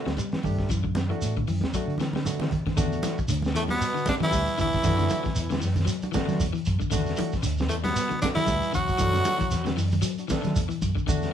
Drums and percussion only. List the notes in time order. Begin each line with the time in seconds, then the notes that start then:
0.06 snare, closed hi-hat
0.17 closed hi-hat, high conga, shekere
0.32 snare, closed hi-hat
0.43 kick, open hi-hat, low conga, shekere
0.58 kick, snare
0.69 kick, snare, closed hi-hat, shekere
0.85 kick
0.95 snare, closed hi-hat, high conga, low conga, shekere
1.11 closed hi-hat
1.22 closed hi-hat, high conga, shekere
1.37 kick, closed hi-hat
1.48 open hi-hat, low conga, shekere
1.61 snare, closed hi-hat, high conga
1.74 kick, closed hi-hat, high conga, shekere
1.90 closed hi-hat
1.98 snare, closed hi-hat, high conga, shekere
2.13 snare, closed hi-hat, high conga
2.25 closed hi-hat, high conga, shekere
2.40 snare, closed hi-hat, low conga
2.51 kick, closed hi-hat, low conga, shekere
2.66 kick, snare, closed hi-hat, low conga
2.77 kick, snare, closed hi-hat, low conga, shekere
2.92 closed hi-hat, shekere
3.03 snare, closed hi-hat, high conga, shekere
3.18 kick, closed hi-hat, shekere
3.28 closed hi-hat, shekere
3.42 snare, closed hi-hat, high conga, shekere
3.56 closed hi-hat, shekere
3.68 closed hi-hat, high conga, shekere
3.73 snare
3.81 closed hi-hat, shekere
3.97 shekere
4.06 kick, snare, closed hi-hat, high conga, shekere
4.20 low conga, shekere
4.24 snare
4.31 kick, closed hi-hat, high conga, shekere
4.47 closed hi-hat, shekere
4.58 kick, closed hi-hat, shekere
4.72 kick, snare, closed hi-hat, shekere
4.84 kick, snare, closed hi-hat, low conga, shekere
4.99 snare, closed hi-hat, high conga, shekere
5.09 closed hi-hat, high conga, shekere
5.24 kick, snare, closed hi-hat, shekere
5.36 closed hi-hat, shekere
5.50 snare, closed hi-hat, high conga, shekere
5.62 snare, open hi-hat, shekere
5.76 snare, high conga, low conga, shekere
5.87 closed hi-hat, shekere
6.02 closed hi-hat, high conga, shekere
6.13 kick, snare, closed hi-hat, high conga, shekere
6.28 snare, closed hi-hat, low conga, shekere
6.40 kick, closed hi-hat, high conga, shekere
6.55 closed hi-hat, shekere
6.66 kick, closed hi-hat, shekere
6.81 kick, shekere
6.92 kick, snare, closed hi-hat, low conga, shekere
7.06 snare, closed hi-hat, shekere
7.16 closed hi-hat, high conga, shekere
7.32 kick, snare, closed hi-hat, shekere
7.43 closed hi-hat, shekere
7.58 snare, closed hi-hat, high conga, shekere
7.70 closed hi-hat, shekere
7.84 snare, closed hi-hat, high conga, shekere
7.96 closed hi-hat, shekere
8.10 high conga, shekere
8.22 kick, snare, closed hi-hat, high conga, shekere
8.36 snare, low conga, shekere
8.47 kick, closed hi-hat, high conga, shekere
8.62 closed hi-hat, shekere
8.74 kick, closed hi-hat, shekere
8.88 kick, closed hi-hat, shekere
8.99 kick, closed hi-hat, low conga, shekere
9.14 snare, closed hi-hat, high conga, shekere
9.25 snare, closed hi-hat, high conga, shekere
9.40 kick, closed hi-hat, shekere
9.51 snare, closed hi-hat, shekere
9.66 snare, closed hi-hat, high conga, shekere
9.76 open hi-hat, shekere
9.91 high conga, low conga, shekere
10.02 closed hi-hat, shekere
10.18 closed hi-hat, shekere
10.29 kick, snare, closed hi-hat, high conga, shekere
10.44 snare, closed hi-hat, low conga, shekere
10.56 kick, closed hi-hat, high conga, shekere
10.70 closed hi-hat, shekere
10.82 kick, closed hi-hat, high conga, shekere
10.97 kick, shekere
11.07 kick, closed hi-hat, low conga, shekere
11.22 snare, closed hi-hat, shekere